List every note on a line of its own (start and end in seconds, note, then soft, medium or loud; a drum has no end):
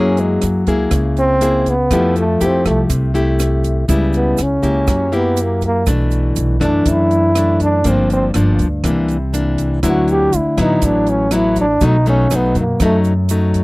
0.00 0.39 F#2 loud
0.00 0.90 F#3 medium
0.00 0.64 A#3 medium
0.00 0.21 C#4 loud
0.00 0.64 E4 medium
0.00 0.64 G#4 medium
0.17 0.43 G#3 medium
0.17 closed hi-hat soft
0.17 shaker soft
0.42 0.66 F#2 medium
0.42 cross-stick soft
0.42 closed hi-hat soft
0.42 shaker medium
0.67 0.90 C#2 medium
0.67 1.38 A#3 medium
0.67 1.38 E4 medium
0.67 1.38 G#4 medium
0.67 kick soft
0.67 closed hi-hat soft
0.67 shaker soft
0.91 1.87 C#2 medium
0.91 1.88 C#3 soft
0.91 kick medium
0.91 cross-stick medium
0.91 closed hi-hat soft
0.91 shaker medium
1.17 1.71 C4 loud
1.17 closed hi-hat soft
1.17 shaker soft
1.41 1.73 A#3 medium
1.41 1.74 E4 medium
1.41 1.74 G#4 medium
1.41 closed hi-hat soft
1.41 shaker medium
1.66 2.18 B3 loud
1.66 kick soft
1.66 closed hi-hat soft
1.66 shaker soft
1.91 2.37 F2 medium
1.91 2.88 F3 medium
1.91 2.23 A3 medium
1.91 2.24 E4 medium
1.91 2.24 G4 medium
1.91 kick medium
1.91 cross-stick medium
1.91 closed hi-hat soft
1.91 shaker medium
2.16 2.47 A3 medium
2.16 closed hi-hat soft
2.16 shaker soft
2.41 2.64 F2 medium
2.41 3.11 A3 soft
2.41 3.11 E4 medium
2.41 3.11 G4 medium
2.41 closed hi-hat soft
2.41 shaker medium
2.45 2.66 C4 medium
2.65 2.89 C2 medium
2.65 2.81 A3 medium
2.65 kick soft
2.65 cross-stick medium
2.65 closed hi-hat soft
2.65 shaker soft
2.89 3.85 C2 medium
2.89 3.87 C3 medium
2.89 kick medium
2.89 closed hi-hat soft
2.89 shaker medium
3.14 3.85 A3 medium
3.14 3.85 E4 medium
3.14 3.85 G4 medium
3.14 closed hi-hat soft
3.14 shaker soft
3.39 cross-stick medium
3.39 closed hi-hat soft
3.39 shaker medium
3.64 kick soft
3.64 closed hi-hat soft
3.64 shaker soft
3.88 4.35 C#2 medium
3.88 4.86 C#3 medium
3.88 4.39 G3 medium
3.88 4.38 B3 medium
3.88 4.39 E4 medium
3.88 kick medium
3.88 closed hi-hat soft
3.88 shaker medium
4.13 4.44 B3 medium
4.13 closed hi-hat soft
4.13 shaker soft
4.37 4.62 C#2 medium
4.37 cross-stick medium
4.37 closed hi-hat soft
4.37 shaker medium
4.43 5.16 C#4 medium
4.62 4.87 C#2 medium
4.62 5.09 A#3 medium
4.62 5.09 E4 medium
4.62 5.09 G4 medium
4.62 kick soft
4.62 closed hi-hat soft
4.62 shaker soft
4.87 5.83 F#2 loud
4.87 5.85 F#3 medium
4.87 kick medium
4.87 cross-stick medium
4.87 closed hi-hat soft
4.87 shaker medium
5.12 5.83 A#3 medium
5.12 5.43 B3 medium
5.12 5.83 E4 medium
5.12 5.84 G4 medium
5.12 closed hi-hat soft
5.12 shaker soft
5.37 closed hi-hat soft
5.37 shaker medium
5.42 5.65 A#3 medium
5.61 kick soft
5.61 closed hi-hat soft
5.61 shaker soft
5.66 5.88 A#3 medium
5.87 6.33 B1 medium
5.87 6.84 B2 medium
5.87 6.58 E3 medium
5.87 6.58 A3 medium
5.87 6.58 D4 medium
5.87 kick medium
5.87 cross-stick medium
5.87 closed hi-hat soft
5.87 shaker medium
6.11 closed hi-hat soft
6.11 shaker soft
6.36 6.60 B1 medium
6.36 closed hi-hat soft
6.36 shaker medium
6.60 6.85 F#2 medium
6.60 7.31 E3 medium
6.60 7.32 A3 medium
6.60 7.32 D4 medium
6.60 6.91 D4 medium
6.60 kick soft
6.60 cross-stick medium
6.60 closed hi-hat soft
6.60 shaker soft
6.86 7.81 F#2 loud
6.86 7.83 F#2 medium
6.86 kick medium
6.86 closed hi-hat soft
6.86 shaker medium
6.90 7.62 E4 medium
7.11 closed hi-hat soft
7.11 shaker soft
7.35 7.82 E3 soft
7.35 7.82 A3 soft
7.35 7.82 D4 medium
7.35 cross-stick medium
7.35 closed hi-hat soft
7.35 shaker medium
7.60 7.91 D4 medium
7.60 kick soft
7.60 closed hi-hat soft
7.60 shaker soft
7.84 8.31 G1 medium
7.84 8.82 G2 medium
7.84 8.31 F3 medium
7.84 8.31 A#3 medium
7.84 8.31 D4 medium
7.84 kick medium
7.84 closed hi-hat soft
7.84 shaker medium
7.90 8.12 C4 medium
8.10 8.27 C4 medium
8.10 closed hi-hat soft
8.10 shaker soft
8.34 8.58 G1 medium
8.34 8.67 F3 medium
8.34 8.67 A#3 soft
8.34 8.67 D4 soft
8.34 cross-stick medium
8.34 closed hi-hat soft
8.34 shaker medium
8.59 8.83 D2 medium
8.59 kick soft
8.59 closed hi-hat soft
8.59 shaker soft
8.84 9.79 C2 medium
8.84 9.81 C3 medium
8.84 9.16 E3 medium
8.84 9.16 A#3 medium
8.84 9.17 D4 medium
8.84 kick medium
8.84 cross-stick medium
8.84 closed hi-hat soft
8.84 shaker medium
9.08 closed hi-hat soft
9.08 shaker soft
9.33 9.79 E3 medium
9.33 9.80 A#3 medium
9.33 9.79 D4 medium
9.33 closed hi-hat soft
9.33 shaker medium
9.58 kick soft
9.58 closed hi-hat soft
9.58 shaker soft
9.83 10.29 D2 medium
9.83 10.80 D3 medium
9.83 10.32 F#3 medium
9.83 10.33 B3 medium
9.83 10.33 E4 medium
9.83 kick medium
9.83 cross-stick medium
9.83 closed hi-hat soft
9.83 shaker medium
9.89 10.12 F#4 medium
10.08 10.38 G4 loud
10.08 closed hi-hat soft
10.08 shaker soft
10.33 10.56 D2 medium
10.33 10.59 E4 medium
10.33 closed hi-hat soft
10.33 shaker medium
10.57 10.80 A1 medium
10.57 11.28 F#3 medium
10.57 11.28 B3 medium
10.57 10.87 D#4 medium
10.57 11.28 E4 medium
10.57 kick soft
10.57 cross-stick medium
10.57 closed hi-hat soft
10.57 shaker soft
10.82 11.77 A1 loud
10.82 11.79 A2 medium
10.82 11.11 D4 medium
10.82 kick medium
10.82 closed hi-hat soft
10.82 shaker medium
11.07 11.37 C#4 medium
11.07 closed hi-hat soft
11.07 shaker soft
11.31 11.65 F#3 medium
11.31 11.65 B3 medium
11.31 11.65 E4 medium
11.31 cross-stick medium
11.31 closed hi-hat soft
11.31 shaker medium
11.35 11.58 E4 medium
11.56 kick soft
11.56 closed hi-hat soft
11.56 shaker soft
11.60 11.88 D4 loud
11.81 12.27 B1 medium
11.81 12.78 B2 medium
11.81 11.96 F#3 medium
11.81 11.96 A3 medium
11.81 11.96 D#4 medium
11.81 kick medium
11.81 closed hi-hat soft
11.81 shaker medium
11.86 12.08 D#4 loud
12.06 12.27 F#3 medium
12.06 12.27 A3 medium
12.06 12.37 C#4 medium
12.06 12.28 D#4 medium
12.06 closed hi-hat soft
12.06 shaker soft
12.30 12.54 B1 medium
12.30 12.63 F#3 medium
12.30 12.63 A3 medium
12.30 12.63 D#4 medium
12.30 cross-stick medium
12.30 closed hi-hat soft
12.30 shaker medium
12.36 12.58 B3 medium
12.55 12.78 F#2 medium
12.55 kick soft
12.55 closed hi-hat soft
12.55 shaker soft
12.60 12.81 A#3 medium
12.80 13.64 F#2 medium
12.80 13.12 F#3 soft
12.80 13.13 A3 medium
12.80 13.13 D#4 medium
12.80 kick medium
12.80 cross-stick medium
12.80 closed hi-hat soft
12.80 shaker medium
12.85 12.98 A3 medium
13.04 closed hi-hat soft
13.04 shaker soft
13.29 13.64 F#3 medium
13.29 13.64 A3 medium
13.29 13.64 D#4 medium
13.29 closed hi-hat soft
13.29 shaker medium
13.54 kick soft
13.54 closed hi-hat soft
13.54 shaker soft